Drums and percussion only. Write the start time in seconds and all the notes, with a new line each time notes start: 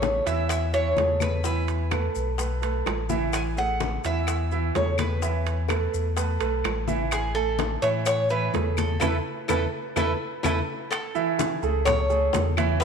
0.02 high bongo, high conga, high timbale, low timbale, maracas
0.27 high conga, high timbale, maracas
0.49 high bongo, high conga, high timbale, claves, maracas
0.73 high bongo, high conga, maracas
0.96 high bongo, low bongo, high conga, high timbale, low timbale, maracas
1.20 high bongo, high conga, high timbale, claves, maracas
1.44 high bongo, high conga, maracas
1.68 high bongo, high conga, high timbale, maracas
1.91 high bongo, high conga, high timbale, low timbale, claves, maracas
2.15 high conga, maracas
2.38 high bongo, high conga, high timbale, maracas
2.62 high bongo, high conga, high timbale, maracas
2.86 high bongo, low bongo, high conga, high timbale, low timbale, claves, maracas
3.09 high bongo, high conga, maracas
3.33 high bongo, high conga, high timbale, claves, maracas
3.57 high bongo, high conga, maracas
3.80 high bongo, high conga, high timbale, low timbale, maracas
4.04 high conga, high timbale, maracas
4.27 high bongo, high conga, high timbale, claves, maracas
4.51 high bongo, high conga, maracas
4.75 high bongo, low bongo, high conga, high timbale, low timbale, maracas
4.98 high bongo, high conga, high timbale, claves, maracas
5.22 high bongo, high conga, maracas
5.45 high bongo, high conga, high timbale, maracas
5.69 high bongo, high conga, high timbale, low timbale, claves, maracas
5.93 high conga, maracas
6.16 high bongo, high conga, high timbale, maracas
6.40 high bongo, high conga, high timbale, maracas
6.64 high bongo, low bongo, high conga, high timbale, low timbale, claves, maracas
6.88 high bongo, high conga, maracas
7.11 high bongo, high conga, high timbale, claves, maracas
7.35 high bongo, high conga, maracas
7.59 high bongo, high conga, high timbale, low timbale, maracas
7.82 high conga, high timbale, maracas
8.06 high bongo, high conga, high timbale, claves, maracas
8.29 high bongo, high conga, maracas
8.54 high bongo, low bongo, high conga, high timbale, low timbale, maracas
8.77 high bongo, high conga, high timbale, claves, maracas
9.01 low bongo, high conga, high timbale, claves, maracas
9.49 low bongo, high conga, high timbale, claves, maracas
9.96 low bongo, high conga, high timbale, claves, maracas
10.43 low bongo, high conga, high timbale, claves, maracas
10.92 high bongo, high conga, high timbale, claves, maracas
11.15 high conga, maracas
11.39 high bongo, high conga, high timbale, maracas
11.63 high conga, maracas
11.86 high bongo, high conga, low conga, high timbale, claves, maracas
12.10 high conga, maracas
12.33 high bongo, low bongo, high conga, high timbale, low timbale, maracas
12.57 high conga, high timbale, claves, maracas
12.81 high bongo, high conga